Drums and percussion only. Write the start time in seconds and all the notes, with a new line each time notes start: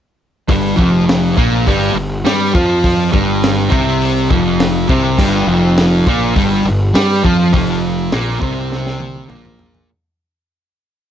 0.49 kick, open hi-hat
0.79 kick
1.09 snare, open hi-hat
1.37 kick
1.67 kick, open hi-hat
2.26 snare, open hi-hat
2.55 kick
2.84 kick, open hi-hat
3.14 kick
3.43 snare, open hi-hat
3.72 kick
4.02 open hi-hat
4.31 kick
4.60 snare, open hi-hat
4.89 kick
5.19 kick, crash
5.77 snare, open hi-hat
6.07 kick
6.36 kick, open hi-hat
6.95 snare, open hi-hat
7.25 kick
7.54 kick, open hi-hat
8.12 snare, open hi-hat
8.42 kick
8.72 snare
8.87 snare
9.00 high tom
9.16 high tom
9.30 mid tom
9.45 mid tom
9.59 floor tom
9.75 floor tom